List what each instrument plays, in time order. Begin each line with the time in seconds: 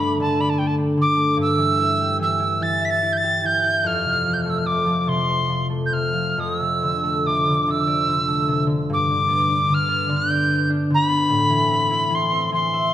Already playing: harp G2 D3 C4 D4, tin whistle B5
0.00 harp A3
0.20 harp D3, tin whistle A5
0.40 harp D5, tin whistle B5
0.49 tin whistle A5
0.58 harp A3, tin whistle G5
0.67 tin whistle A5
0.78 harp D4
0.97 harp D3, tin whistle D6
1.17 harp A3
1.37 harp G2
1.42 tin whistle E6
1.58 harp E3
1.79 harp E4
2.01 harp G4
2.19 harp E3, tin whistle E6
2.40 harp E4
2.61 harp E3, tin whistle A6
2.81 harp E5, tin whistle B6
2.90 tin whistle A6
3.02 harp E4
3.13 tin whistle G6
3.17 tin whistle A6
3.24 harp G4
3.44 harp E3, tin whistle G6
3.63 harp E4
3.84 harp F2, tin whistle F6
4.05 harp C3
4.25 harp F3
4.33 tin whistle G6
4.41 harp A3, tin whistle F6
4.50 tin whistle E6
4.58 tin whistle F6
4.66 harp C3, tin whistle D6
4.86 harp F3
5.01 tin whistle D6
5.07 harp C3, tin whistle C6
5.28 harp C5
5.49 harp F3
5.70 harp A3
5.86 tin whistle G6
5.93 harp C3, tin whistle F6
6.13 harp F3
6.29 tin whistle F6
6.37 harp F2, tin whistle D#6
6.57 harp C3, tin whistle E6
6.82 harp D3
7.04 harp A3
7.26 harp C3, tin whistle D6
7.47 harp D3
7.68 harp C3, tin whistle E6
7.87 harp D5
8.08 harp D3
8.28 harp A3
8.48 harp C3
8.67 harp D3
8.90 harp G2, tin whistle D6
9.11 harp D3
9.28 harp B3
9.49 harp D4
9.69 harp D3
9.74 tin whistle F6
9.88 harp B3
10.09 harp D3
10.16 tin whistle G6
10.30 harp D5
10.50 harp B3
10.70 harp D4
10.90 harp D3, tin whistle B5
11.09 harp B3
11.29 harp A2
11.50 harp E3
11.70 harp C4
11.91 harp E4
12.10 harp E3
12.15 tin whistle C6
12.32 harp C4
12.52 harp E3, tin whistle C6
12.74 harp E5